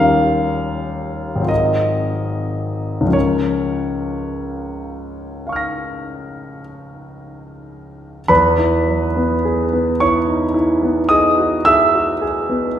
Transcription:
grand piano
Already playing: D#2 G3 C#4 F4 A#4 F5
1.35 G#1 F#3
1.42 C4 F4
1.48 A#4 D#5
3.01 C#2 F3
3.07 C#4 F4
3.13 A#4 C#5
5.47 F5 C#6
5.52 F6 A#6
8.28 E2 B4 B5
8.58 E4
8.87 F#3
9.17 B3
9.45 G#4
9.73 B3
10.00 E4 C#5 C#6
10.28 D#4
10.54 E4
10.82 B3
11.09 G#4 D#5 D#6
11.38 F#4
11.65 G#4 E5 E6
11.94 F#4
12.22 G#4
12.49 B3

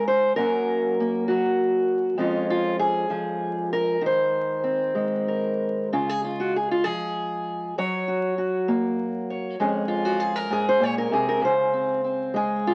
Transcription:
steel-string acoustic guitar
Already playing: C#3 G#3 C#4
0.08 C5
0.36 F#2 F#3 A#3 C#4 A#4
1.00 A#3
1.28 F#3 F#4
2.18 F2 F3 G#3 C#4 F4
2.50 F4
2.79 G#4
3.10 F3
3.73 A#4
4.01 D#3
4.06 C5
4.64 C4
4.95 G#3
5.28 A#4
5.93 C#3 F4
6.09 G#4
6.25 F4
6.40 F#4
6.56 G#4
6.71 F4
6.84 F3 G#4
7.78 F#3 C#5
8.08 F#4
8.38 F#4
8.68 A#3
9.30 C#5
9.60 F2 G#3 C#4 G#4
9.88 F4
10.05 F#4
10.20 G#4
10.36 A#4
10.50 G#2 G#4
10.69 C5
10.79 A#2 C#5
10.98 A#4
11.11 C3 G#4
11.29 A#4
11.41 C#3 C5
11.73 C4
12.04 C4
12.34 G#3 G#4
12.67 F4

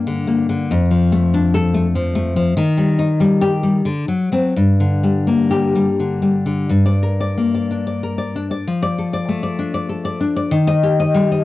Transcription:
nylon-string guitar
Already playing: G2 A#3 D4
0.07 D3
0.27 A#3
0.49 D3
0.71 F2
0.91 F3
1.12 A3
1.34 D4
1.54 A4
1.74 A3
1.95 F3
2.15 A3
2.36 F3
2.57 D#3
2.77 G3
2.99 D#4
3.20 G3
3.41 G4
3.63 G3
3.85 D3
4.08 F#3
4.32 F#3 C4
4.56 G2
4.80 D3
5.03 G3
5.27 A#3
5.51 G4
5.75 G3
6.00 D3
6.22 G3
6.46 D3
6.70 G2
6.86 D5
7.03 A#4
7.21 D5
7.38 A#3
7.55 D5
7.71 D4
7.87 D5
8.03 A#4
8.18 D5
8.36 D4
8.51 D5
8.67 F3
8.82 D5
8.98 A4
9.13 D5
9.29 A3
9.43 D5
9.59 D4
9.74 D5
9.89 A4
10.05 D5
10.21 D4
10.36 D5
10.51 D#3
10.67 D#5
10.83 G4
11.00 D#5
11.14 G3
11.31 D#5

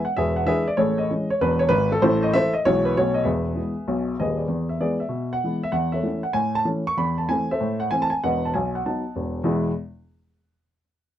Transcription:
upright piano
0.05 F#5
0.17 E1 E2 G#4 B4 E5
0.36 F#5
0.46 E3 G#3 D4 G#4 B4 E5
0.68 D5
0.77 A1 A2 G#4 A4 C#5
0.98 D#5
1.11 E3 G#3 C#4
1.30 C#5
1.41 E1 E2 B4
1.59 C#5
1.69 G#1 G#2 B4
1.92 A4
2.02 A1 A2 E4 A4 C5
2.23 D#5
2.33 E3 A3 E4 A4 C5 E5
2.53 D#5
2.65 B1 B2 E3 G#3 E4 C#5
2.85 B4
2.97 B1 B2 F#3 A3 B3 C#5
3.14 D#5
3.23 E1 E2 G#4 B4 E5
3.56 E3 G#3 B3
3.88 B1 B2
4.19 D#1 D#2 G#4 B4 D#5
4.37 G#4 B4 D5
4.48 E2
4.69 E5
4.80 E3 G#3 B3 G#4 B4 D5
5.00 E5
5.09 B2
5.33 F#5
5.44 E3 G#3 B3
5.63 E5
5.72 E2 F#5
5.92 A4 C#5 E5
6.03 E3 A3 C#4
6.23 F#5
6.33 A2 G#5
6.55 A5
6.65 E3 A3 C#4
6.87 C#6
6.97 E2 B5
7.18 A5
7.29 E3 A3 C4 G#5
7.51 A4 C5 E5
7.60 A2
7.80 F#5
7.91 E3 A3 C4 G#5
8.02 A5
8.10 G#5
8.24 E1 E2 B4 D#5 F#5
8.45 A5
8.54 B1 G#5
8.75 F#5
8.86 F#3 B3 D#4 D#5 F#5 A5
9.16 E1 E2
9.44 E2 B2 G#3 B3 E4 G#4 E5

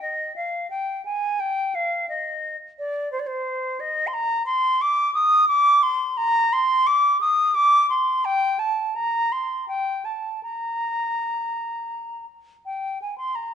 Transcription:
flute
0.02 D#5
0.36 F5
0.70 G5
1.05 G#5
1.40 G5
1.75 F5
2.09 D#5
2.79 D5
3.12 C5
3.19 D5
3.27 C5
3.80 D#5
4.07 C6
4.13 A#5
4.46 C6
4.81 D6
5.14 D#6
5.48 D6
5.83 C6
6.17 A#5
6.53 C6
6.87 D6
7.21 D#6
7.55 D6
7.90 C6
8.25 G5
8.59 A5
8.95 A#5
9.32 C6
9.68 G5
10.05 A5
10.43 A#5
12.65 G5
13.02 G#5
13.18 C6
13.35 A#5

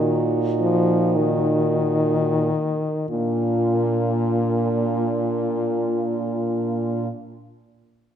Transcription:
french horn
Already playing: A#2 D#3 D#4 F#4
0.61 F3
1.16 D#3
3.09 A#2 D4 F4

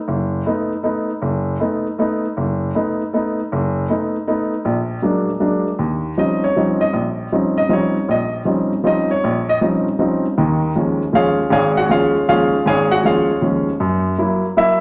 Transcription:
upright piano
0.08 F#1
0.46 A3 B3 D#4
0.83 A3 B3 D#4
1.22 F#1
1.60 A3 B3 D#4
1.98 A3 B3 D#4
2.37 F#1
2.75 A3 B3 D#4
3.13 A3 B3 D#4
3.52 F#1
3.89 A3 B3 D#4
4.27 A3 B3 D#4
4.65 A#1
5.02 F#3 G#3 A#3 D4
5.40 F#3 G#3 A#3 D4
5.79 D#2
6.17 F3 G3 C4 C#4 D#4 D#5
6.44 C#5
6.56 F3 G3 C4 C#4 D#4
6.81 D#5
6.93 A#1
7.32 F3 G3 C4 C#4 D#4
7.58 D#5
7.69 F3 G3 C4 C#4 D#4 C#5
8.09 A#1 D#5
8.45 F3 G3 C4 C#4 D#4
8.84 F3 G3 C4 C#4 D#4 D#5
9.11 C#5
9.24 A#1
9.49 D#5
9.61 F3 G3 C4 C#4 D#4
9.99 F3 G3 C4 C#4 D#4
10.38 D#2 D#3
10.76 D#2 F3 G#3 C#4
11.13 D#2 F3 G#3 C#4 F4 G#4 C#5 F5
11.50 G#1 G#2 G#4 C#5 F5 G#5
11.77 F#4 F#5
11.89 D#2 F3 G#3 C#4 F4 G#4 C#5 F5
12.28 D#2 F3 G#3 C#4 F4 G#4 C#5 F5
12.66 G#1 G#2 G#4 C#5 F5 G#5
12.92 F#4 F#5
13.03 D#2 F3 G#3 C#4 F4 G#4 C#5 F5
13.41 D#2 F3 G#3 C#4
13.80 F#2
14.18 F#3 A#3 E4
14.57 F#3 A#3 E4 E5

